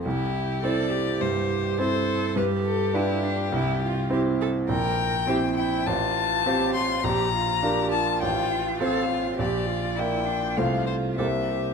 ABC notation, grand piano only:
X:1
M:4/4
L:1/8
Q:1/4=103
K:Cmix
V:1 name="Grand piano"
C,,2 [CEc]2 G,,2 [CEc]2 | G,,2 [DF=B]2 C,,2 [CEc]2 | B,,,2 [CEc]2 A,,,2 [CFc]2 | B,,,2 [DFB]2 A,,,2 [CFc]2 |
B,,,2 [B,Fd]2 [C,,A,Fc]2 [C,,B,Gc]2 |]